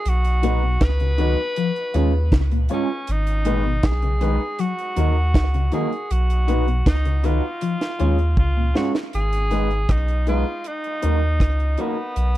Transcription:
Already playing: tenor saxophone G#4
0.06 sub bass B1, tenor saxophone F#4, closed hi-hat
0.24 closed hi-hat
0.42 clean electric guitar A#2 F#3 B3 D#4, grand piano D#4 F#4 B4, closed hi-hat
0.63 clean electric guitar B2
0.81 sub bass C#2, tenor saxophone B4, kick, snare, closed hi-hat
1.00 clean electric guitar C#3, grand piano F#4 B4, closed hi-hat
1.18 clean electric guitar D#3 F#3 B3 D#4, grand piano D#4 F#4 B4, closed hi-hat
1.56 clean electric guitar F3, closed hi-hat
1.76 closed hi-hat
1.94 sub bass D#2, clean electric guitar D#3 G#3 C#4 F4, grand piano F4 G#4 C#5, closed hi-hat
2.32 sub bass C#2, clean electric guitar C#3, kick, snare, closed hi-hat
2.51 clean electric guitar A#2, closed hi-hat
2.69 clean electric guitar G#2 G#3 C#4 F4, grand piano F4 G#4 C#5, closed hi-hat
2.73 tenor saxophone C#4
3.07 sub bass G#1, tenor saxophone D#4, closed hi-hat
3.27 closed hi-hat
3.45 clean electric guitar A#2 G#3 B3 D#4, grand piano D#4 G#4 B4, closed hi-hat
3.65 clean electric guitar B2
3.83 sub bass B1, tenor saxophone G#4, kick, snare, closed hi-hat
4.02 clean electric guitar C#3, grand piano G#4 B4, closed hi-hat
4.21 clean electric guitar D#3 G#3 B3 D#4, grand piano D#4 G#4 B4, closed hi-hat
4.59 clean electric guitar F#3, tenor saxophone F#4, closed hi-hat
4.79 closed hi-hat
4.96 sub bass D#2, clean electric guitar D#3 F#3 A#3 D#4, grand piano D#4 F#4 A#4, closed hi-hat
5.34 sub bass C#2, kick, snare, closed hi-hat
5.54 clean electric guitar C#3, closed hi-hat
5.72 clean electric guitar D#3 F#3 A#3 D#4, grand piano D#4 F#4 A#4, tenor saxophone G#4, closed hi-hat
5.92 closed hi-hat
6.11 sub bass B1, tenor saxophone F#4, closed hi-hat
6.30 closed hi-hat
6.47 clean electric guitar A#2 F#3 B3 D#4, grand piano D#4 F#4 B4, closed hi-hat
6.67 clean electric guitar B2, closed hi-hat
6.86 sub bass C#2, tenor saxophone D#4, kick, snare, closed hi-hat
7.05 clean electric guitar C#3, grand piano F#4 B4, closed hi-hat
7.23 clean electric guitar D#3 F#3 B3 D#4, grand piano D#4 F#4 B4, tenor saxophone F4, closed hi-hat
7.61 clean electric guitar F3, closed hi-hat
7.81 snare, closed hi-hat
7.99 sub bass D#2, clean electric guitar D#3 G#3 C#4 F4, grand piano F4 G#4 C#5, closed hi-hat
8.19 closed hi-hat
8.37 sub bass C#2, clean electric guitar C#3, tenor saxophone F4, kick
8.57 clean electric guitar A#2
8.74 clean electric guitar G#2 G#3 C#4 F4, grand piano F4 G#4 C#5, tenor saxophone F#4, snare
8.95 snare
9.13 sub bass G#1, tenor saxophone G#4, closed hi-hat
9.33 closed hi-hat
9.51 clean electric guitar G#3 B3 D#4, grand piano D#4 G#4 B4, closed hi-hat
9.70 closed hi-hat
9.89 sub bass B1, tenor saxophone D#4, kick, cross-stick, closed hi-hat
10.08 closed hi-hat
10.26 clean electric guitar G#3 B3 D#4, grand piano D#4 G#4 B4, tenor saxophone F4, closed hi-hat
10.64 tenor saxophone D#4, closed hi-hat
10.84 closed hi-hat
11.02 sub bass D#2, clean electric guitar F#3 A#3 D#4, grand piano D#4 F#4 A#4, closed hi-hat
11.40 sub bass C#2, kick, cross-stick, closed hi-hat
11.60 closed hi-hat
11.77 clean electric guitar F#3 A#3 D#4, tenor saxophone B3, grand piano D#4 F#4 A#4, closed hi-hat
12.16 sub bass B1, closed hi-hat

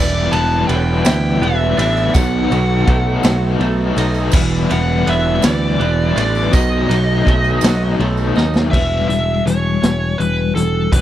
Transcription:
Already playing: picked electric bass E1, overdriven electric guitar E3 G3 B3, lead electric guitar D5
0.00 overdriven electric guitar E4
0.32 picked electric bass E1, overdriven electric guitar B3 E4, lead electric guitar A5, ride, tambourine
0.36 overdriven electric guitar G3
0.67 picked electric bass E1, overdriven electric guitar E3 G3, lead electric guitar G5, ride
0.72 overdriven electric guitar B3 E4
1.03 picked electric bass D2, clean electric guitar E3, overdriven electric guitar B3 E4, lead electric guitar G5, snare, ride, tambourine
1.08 overdriven electric guitar G3
1.40 picked electric bass E1, overdriven electric guitar E3 G3, lead electric guitar E5, ride
1.44 overdriven electric guitar B3 E4
1.77 picked electric bass A1, overdriven electric guitar B3 E4, clean electric guitar D4, lead electric guitar E5, ride, tambourine
1.81 overdriven electric guitar G3
1.97 tambourine
2.14 picked electric bass B1, overdriven electric guitar B2 D#3 F#3 B3 D#4 A4, lead electric guitar F#5, kick, ride, tambourine
2.51 picked electric bass B1, overdriven electric guitar F#3 B3 D#4 A4, ride, tambourine
2.87 picked electric bass B1, overdriven electric guitar F#3 B3 D#4 A4, clean electric guitar A3, kick, ride
3.23 picked electric bass B1, overdriven electric guitar F#3 B3 D#4 A4, snare, ride, tambourine
3.59 picked electric bass B1, overdriven electric guitar F#3 B3 D#4 A4, clean electric guitar A3, ride
3.96 picked electric bass B1, overdriven electric guitar F#3 B3 D#4 A4, ride, tambourine
4.14 tambourine
4.32 picked electric bass E1, overdriven electric guitar E3 G3 B3 E4, kick, crash, tambourine
4.70 picked electric bass E1, overdriven electric guitar G3 B3 E4, lead electric guitar F#5, ride, tambourine
5.06 picked electric bass E1, overdriven electric guitar E3 G3 B3 E4, lead electric guitar E5, ride
5.42 picked electric bass D2, clean electric guitar E3, overdriven electric guitar G3 B3 E4, lead electric guitar D5, snare, ride, tambourine
5.79 picked electric bass E1, overdriven electric guitar E3 G3 B3 E4, ride
6.14 picked electric bass A1, overdriven electric guitar G3 B3 E4, clean electric guitar D4, lead electric guitar D5, ride, tambourine
6.35 tambourine
6.51 picked electric bass B1, overdriven electric guitar B2 F#3 A3 D#4, lead electric guitar D#5, kick, ride, tambourine
6.88 picked electric bass B1, overdriven electric guitar F#3 A3 D#4, ride, tambourine
7.25 picked electric bass B1, overdriven electric guitar B2 F#3 A3 D#4, kick, ride
7.44 tambourine
7.61 picked electric bass B1, overdriven electric guitar F#3 A3 D#4, snare, ride, tambourine
7.98 picked electric bass B1, overdriven electric guitar B2 F#3 A3 D#4, ride
8.17 tambourine
8.35 picked electric bass D#2, overdriven electric guitar F#3 A3 D#4, snare, tambourine
8.54 snare, tambourine
8.71 picked electric bass E1, overdriven electric guitar E3 G3 B3, lead electric guitar E5, kick, crash
9.08 picked electric bass E1, overdriven electric guitar E3 G3, lead electric guitar E5, closed hi-hat
9.46 picked electric bass E1, overdriven electric guitar E3 G3, lead electric guitar C#5, closed hi-hat
9.82 picked electric bass E1, overdriven electric guitar E3 G3, snare, closed hi-hat
10.18 picked electric bass E1, overdriven electric guitar E3 G3, lead electric guitar B4, closed hi-hat
10.55 picked electric bass E1, overdriven electric guitar E3 G3, lead electric guitar A4, closed hi-hat
10.92 picked electric bass E1, overdriven electric guitar E3 G3 B3, lead electric guitar B4, kick, closed hi-hat

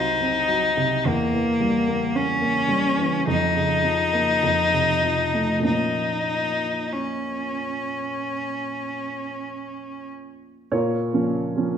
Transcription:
Already playing: grand piano C2 C3 F#3 C4, cello D#4
0.20 grand piano C4
0.48 grand piano F#3
0.77 grand piano C3
1.05 grand piano E2, cello A#3
1.33 grand piano E3
1.60 grand piano G3
1.88 grand piano A#3
2.15 grand piano C#4, cello C#4
2.41 grand piano A#3
2.68 grand piano G3
2.99 grand piano E3
3.27 grand piano F2, cello D#4
3.55 grand piano C#3
3.84 grand piano F3
4.13 grand piano A#3
4.43 grand piano F2
4.74 grand piano C3
5.03 grand piano F3
5.33 grand piano A3
5.60 grand piano A#2 F3 A#3 C#4
5.66 cello D#4
6.93 cello C#4
10.72 grand piano A#2 F4 A#4 C#5
11.13 grand piano F3 A#3 C#4
11.57 grand piano F3 A#3 C#4

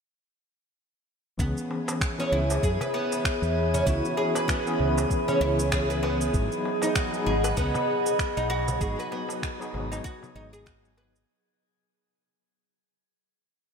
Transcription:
1.38 fretless electric bass C#2, tine electric piano E3 B3 C#4, oud B3, ambient pad G#4 C#5 E5 B5, synth texture G#4 G#5, kick, cabasa
1.42 tine electric piano G#4
1.57 cabasa
1.71 darbuka ka
1.88 darbuka ka, darbuka tek, cabasa
2.01 finger snap, kick, cabasa
2.18 tine electric piano E3 B3 C#4 G#4, oud C#4, cabasa
2.32 fretless electric bass C#2, oud E4
2.50 darbuka ka, darbuka tek, cabasa
2.63 fretless electric bass F#2, oud G#4, kick, cabasa
2.81 oud B4, darbuka tek, darbuka dum, cabasa
2.94 oud B3
3.12 darbuka ka, darbuka tek, cabasa
3.25 finger snap, kick, cabasa
3.42 fretless electric bass E2, cabasa
3.74 oud C#4, darbuka ka, darbuka dum, cabasa
3.85 fretless electric bass C#2, tine electric piano E3 B3 C#4 F#4, oud E4, kick, cabasa
4.05 cabasa
4.17 oud G#4, darbuka ka
4.35 oud B4, darbuka ka, darbuka tek, cabasa
4.48 oud B3, finger snap, kick, cabasa
4.66 tine electric piano E3 B3 C#4 G#4, cabasa
4.79 fretless electric bass C#2, darbuka dum
4.98 darbuka ka, darbuka tek, cabasa
5.10 kick, cabasa
5.26 tine electric piano E3 B3 C#4, oud C#4, darbuka tek, darbuka dum, cabasa
5.30 tine electric piano G#4
5.41 fretless electric bass C#2, oud E4
5.59 cabasa
5.72 oud G#4, finger snap, kick, cabasa
5.90 oud B4, cabasa
6.03 oud B3, darbuka tek
6.21 cabasa
6.32 fretless electric bass G#1, tine electric piano F#3 B3 D#4, ambient pad D#5 F#5 B5, kick, cabasa
6.36 tine electric piano G#4
6.52 cabasa
6.65 darbuka ka
6.82 oud D#4, darbuka ka, darbuka tek, cabasa
6.95 oud F#4, finger snap, kick, cabasa
7.13 tine electric piano F#3 B3 D#4 G#4, cabasa
7.26 fretless electric bass G#1, oud G#4
7.44 oud B4, darbuka ka, darbuka tek, cabasa
7.57 fretless electric bass C#2, oud B3, kick, cabasa
7.74 darbuka tek, darbuka dum, cabasa
8.06 darbuka ka, darbuka tek, cabasa
8.19 finger snap, kick, cabasa
8.37 fretless electric bass B1, oud D#4, cabasa
8.50 oud F#4
8.68 darbuka ka, darbuka dum, cabasa
8.79 fretless electric bass G#1, tine electric piano F#3 B3 D#4, oud G#4, kick, cabasa
8.83 tine electric piano F#4
8.99 oud B4, cabasa
9.12 oud B3, darbuka ka
9.29 darbuka ka, darbuka tek, cabasa
9.43 finger snap, kick, cabasa
9.60 tine electric piano F#3 B3 D#4 G#4, cabasa
9.74 fretless electric bass G#1, darbuka dum
9.92 oud D#4, darbuka ka, darbuka tek, cabasa
10.04 oud F#4, kick, cabasa
10.21 tine electric piano F#3 B3 D#4 G#4, darbuka tek, darbuka dum, cabasa
10.35 fretless electric bass G#1, oud D#4
10.53 oud G#4, cabasa
10.66 oud F#4, finger snap, kick, cabasa
10.85 cabasa
10.97 oud B4, darbuka tek
11.16 cabasa

